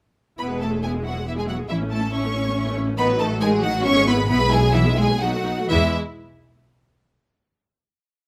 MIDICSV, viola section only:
0, 0, Header, 1, 2, 480
1, 0, Start_track
1, 0, Key_signature, 4, "major"
1, 0, Tempo, 432900
1, 430, Time_signature, 3, 2, 24, 8
1, 3778, Tempo, 445104
1, 5218, Tempo, 473186
1, 8804, End_track
2, 0, Start_track
2, 0, Title_t, "Viola section"
2, 0, Program_c, 0, 48
2, 430, Note_on_c, 0, 59, 34
2, 431, Note_on_c, 0, 64, 33
2, 545, Note_off_c, 0, 59, 0
2, 546, Note_off_c, 0, 64, 0
2, 554, Note_on_c, 0, 56, 31
2, 556, Note_on_c, 0, 68, 32
2, 672, Note_on_c, 0, 64, 35
2, 677, Note_off_c, 0, 56, 0
2, 678, Note_off_c, 0, 68, 0
2, 678, Note_on_c, 0, 59, 34
2, 797, Note_off_c, 0, 64, 0
2, 799, Note_on_c, 0, 56, 35
2, 800, Note_off_c, 0, 59, 0
2, 800, Note_on_c, 0, 68, 32
2, 919, Note_on_c, 0, 59, 34
2, 921, Note_off_c, 0, 56, 0
2, 921, Note_off_c, 0, 68, 0
2, 922, Note_on_c, 0, 64, 34
2, 1033, Note_off_c, 0, 59, 0
2, 1035, Note_off_c, 0, 64, 0
2, 1050, Note_on_c, 0, 56, 30
2, 1052, Note_on_c, 0, 68, 28
2, 1165, Note_on_c, 0, 64, 35
2, 1168, Note_off_c, 0, 56, 0
2, 1169, Note_off_c, 0, 68, 0
2, 1169, Note_on_c, 0, 59, 33
2, 1286, Note_off_c, 0, 64, 0
2, 1286, Note_on_c, 0, 56, 33
2, 1288, Note_off_c, 0, 59, 0
2, 1289, Note_on_c, 0, 68, 32
2, 1407, Note_off_c, 0, 56, 0
2, 1407, Note_on_c, 0, 59, 36
2, 1408, Note_off_c, 0, 68, 0
2, 1410, Note_on_c, 0, 64, 37
2, 1518, Note_off_c, 0, 59, 0
2, 1520, Note_off_c, 0, 64, 0
2, 1522, Note_on_c, 0, 68, 32
2, 1523, Note_on_c, 0, 56, 34
2, 1632, Note_on_c, 0, 64, 37
2, 1634, Note_on_c, 0, 59, 35
2, 1644, Note_off_c, 0, 56, 0
2, 1644, Note_off_c, 0, 68, 0
2, 1758, Note_off_c, 0, 64, 0
2, 1760, Note_off_c, 0, 59, 0
2, 1767, Note_on_c, 0, 56, 37
2, 1768, Note_on_c, 0, 68, 36
2, 1880, Note_on_c, 0, 61, 37
2, 1885, Note_off_c, 0, 56, 0
2, 1885, Note_on_c, 0, 64, 39
2, 1886, Note_off_c, 0, 68, 0
2, 1993, Note_off_c, 0, 61, 0
2, 1996, Note_off_c, 0, 64, 0
2, 2008, Note_on_c, 0, 57, 36
2, 2008, Note_on_c, 0, 61, 37
2, 2113, Note_off_c, 0, 61, 0
2, 2125, Note_off_c, 0, 57, 0
2, 2125, Note_on_c, 0, 64, 44
2, 2126, Note_on_c, 0, 61, 39
2, 2232, Note_off_c, 0, 61, 0
2, 2244, Note_off_c, 0, 64, 0
2, 2246, Note_on_c, 0, 57, 38
2, 2246, Note_on_c, 0, 61, 41
2, 2340, Note_off_c, 0, 61, 0
2, 2353, Note_on_c, 0, 61, 45
2, 2354, Note_on_c, 0, 64, 42
2, 2364, Note_off_c, 0, 57, 0
2, 2469, Note_off_c, 0, 61, 0
2, 2469, Note_off_c, 0, 64, 0
2, 2484, Note_on_c, 0, 57, 32
2, 2485, Note_on_c, 0, 61, 34
2, 2590, Note_off_c, 0, 61, 0
2, 2602, Note_off_c, 0, 57, 0
2, 2603, Note_on_c, 0, 61, 45
2, 2604, Note_on_c, 0, 64, 43
2, 2708, Note_off_c, 0, 61, 0
2, 2721, Note_off_c, 0, 64, 0
2, 2721, Note_on_c, 0, 61, 39
2, 2725, Note_on_c, 0, 57, 40
2, 2831, Note_off_c, 0, 61, 0
2, 2839, Note_off_c, 0, 57, 0
2, 2845, Note_on_c, 0, 61, 45
2, 2848, Note_on_c, 0, 64, 48
2, 2949, Note_off_c, 0, 61, 0
2, 2951, Note_off_c, 0, 64, 0
2, 2960, Note_on_c, 0, 57, 41
2, 2962, Note_on_c, 0, 61, 43
2, 3065, Note_off_c, 0, 61, 0
2, 3073, Note_off_c, 0, 57, 0
2, 3075, Note_on_c, 0, 64, 48
2, 3079, Note_on_c, 0, 61, 45
2, 3179, Note_off_c, 0, 61, 0
2, 3189, Note_off_c, 0, 64, 0
2, 3191, Note_on_c, 0, 57, 50
2, 3193, Note_on_c, 0, 61, 49
2, 3302, Note_on_c, 0, 51, 51
2, 3305, Note_off_c, 0, 57, 0
2, 3306, Note_off_c, 0, 61, 0
2, 3307, Note_on_c, 0, 63, 51
2, 3412, Note_off_c, 0, 51, 0
2, 3414, Note_off_c, 0, 63, 0
2, 3420, Note_on_c, 0, 66, 49
2, 3421, Note_on_c, 0, 54, 50
2, 3539, Note_off_c, 0, 54, 0
2, 3539, Note_off_c, 0, 66, 0
2, 3546, Note_on_c, 0, 63, 54
2, 3549, Note_on_c, 0, 51, 56
2, 3662, Note_off_c, 0, 63, 0
2, 3663, Note_off_c, 0, 51, 0
2, 3668, Note_on_c, 0, 66, 57
2, 3671, Note_on_c, 0, 54, 53
2, 3782, Note_on_c, 0, 63, 59
2, 3784, Note_off_c, 0, 66, 0
2, 3784, Note_on_c, 0, 51, 53
2, 3785, Note_off_c, 0, 54, 0
2, 3891, Note_off_c, 0, 63, 0
2, 3892, Note_off_c, 0, 51, 0
2, 3901, Note_on_c, 0, 54, 46
2, 3903, Note_on_c, 0, 66, 48
2, 4019, Note_off_c, 0, 54, 0
2, 4019, Note_off_c, 0, 66, 0
2, 4021, Note_on_c, 0, 51, 53
2, 4025, Note_on_c, 0, 63, 58
2, 4134, Note_on_c, 0, 66, 50
2, 4136, Note_on_c, 0, 54, 49
2, 4138, Note_off_c, 0, 51, 0
2, 4140, Note_off_c, 0, 63, 0
2, 4252, Note_on_c, 0, 59, 59
2, 4252, Note_on_c, 0, 64, 61
2, 4255, Note_off_c, 0, 66, 0
2, 4256, Note_off_c, 0, 54, 0
2, 4363, Note_on_c, 0, 68, 56
2, 4364, Note_off_c, 0, 59, 0
2, 4364, Note_off_c, 0, 64, 0
2, 4365, Note_on_c, 0, 56, 49
2, 4485, Note_on_c, 0, 59, 57
2, 4487, Note_off_c, 0, 68, 0
2, 4487, Note_on_c, 0, 64, 56
2, 4488, Note_off_c, 0, 56, 0
2, 4608, Note_off_c, 0, 59, 0
2, 4609, Note_off_c, 0, 64, 0
2, 4611, Note_on_c, 0, 68, 53
2, 4612, Note_on_c, 0, 56, 56
2, 4731, Note_off_c, 0, 68, 0
2, 4731, Note_on_c, 0, 64, 56
2, 4732, Note_off_c, 0, 56, 0
2, 4732, Note_on_c, 0, 59, 60
2, 4843, Note_off_c, 0, 64, 0
2, 4844, Note_off_c, 0, 59, 0
2, 4846, Note_on_c, 0, 56, 54
2, 4849, Note_on_c, 0, 68, 55
2, 4970, Note_off_c, 0, 56, 0
2, 4970, Note_on_c, 0, 64, 62
2, 4971, Note_off_c, 0, 68, 0
2, 4971, Note_on_c, 0, 59, 60
2, 5087, Note_on_c, 0, 68, 61
2, 5091, Note_on_c, 0, 56, 56
2, 5094, Note_off_c, 0, 59, 0
2, 5094, Note_off_c, 0, 64, 0
2, 5203, Note_on_c, 0, 59, 59
2, 5205, Note_on_c, 0, 64, 60
2, 5214, Note_off_c, 0, 68, 0
2, 5217, Note_off_c, 0, 56, 0
2, 5320, Note_off_c, 0, 59, 0
2, 5321, Note_off_c, 0, 64, 0
2, 5325, Note_on_c, 0, 56, 48
2, 5329, Note_on_c, 0, 68, 52
2, 5450, Note_off_c, 0, 56, 0
2, 5452, Note_off_c, 0, 68, 0
2, 5452, Note_on_c, 0, 59, 54
2, 5456, Note_on_c, 0, 64, 52
2, 5572, Note_on_c, 0, 68, 44
2, 5573, Note_on_c, 0, 56, 52
2, 5575, Note_off_c, 0, 59, 0
2, 5577, Note_off_c, 0, 64, 0
2, 5695, Note_on_c, 0, 59, 54
2, 5696, Note_off_c, 0, 56, 0
2, 5696, Note_off_c, 0, 68, 0
2, 5696, Note_on_c, 0, 63, 56
2, 5811, Note_off_c, 0, 59, 0
2, 5811, Note_off_c, 0, 63, 0
2, 5815, Note_on_c, 0, 57, 47
2, 5817, Note_on_c, 0, 66, 45
2, 5941, Note_off_c, 0, 57, 0
2, 5942, Note_off_c, 0, 66, 0
2, 5945, Note_on_c, 0, 59, 49
2, 5945, Note_on_c, 0, 63, 48
2, 6067, Note_off_c, 0, 59, 0
2, 6067, Note_off_c, 0, 63, 0
2, 6075, Note_on_c, 0, 57, 44
2, 6075, Note_on_c, 0, 66, 45
2, 6189, Note_off_c, 0, 57, 0
2, 6189, Note_off_c, 0, 66, 0
2, 6195, Note_on_c, 0, 56, 69
2, 6196, Note_on_c, 0, 64, 68
2, 6455, Note_off_c, 0, 56, 0
2, 6455, Note_off_c, 0, 64, 0
2, 8804, End_track
0, 0, End_of_file